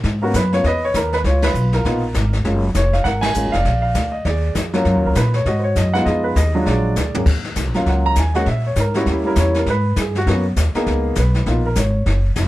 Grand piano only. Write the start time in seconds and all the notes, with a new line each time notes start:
0.22 A#3 B3 C#4 F#4 A#4
0.36 B4
0.52 A#3 B3 C#4 F4 C#5
0.66 B4 D#5
0.85 C#5
0.96 A#4
1.14 B4
1.26 F4 C#5
1.44 B4
1.74 F4 A#4
1.85 A#3 B3 D#4 F4
2.44 G#3 A#3 C#4 F4
2.76 C#5
2.93 F5
3.04 A#4 F#5
3.21 G#5
3.35 G#3 A#3 C#4 F4
3.52 F5
3.57 D5
3.82 F5
4.12 D#5
4.25 G#4 D5
4.74 F#3 A#3 C#4 F4
5.06 A#4
5.17 B4
5.35 C#5
5.47 F#4 D#5
5.59 C5
5.64 C#5
5.77 D#5
5.94 G#3 B3 D#4 F4 F#5
6.05 G#4 D#5
6.24 B4
6.36 D#5
6.55 F#3 G#3 D4 F4
6.67 G#4 D5
7.15 D#2 F#3 A#3 C#4 G#4
7.75 F#3 A#3 C#4 F4 F5
7.89 F#5
8.06 A#5
8.19 G#5
8.34 G#3 A#3 C#4 F#4 F#5
8.48 E5
8.67 C#5
8.80 A#4
8.95 G3 A#3 C#4 E4 F#4
9.08 G4
9.24 G3 A#3 C#4 E4 A#4
9.39 C#5
9.58 A#4
9.70 B4
10.00 G#4
10.18 F#4
10.27 A#3 B3 C#4 F#4
10.75 A#3 B3 D#4 G#4
11.20 B4
11.47 A#3 B3 D#4 F4
11.66 A#4
11.78 C#5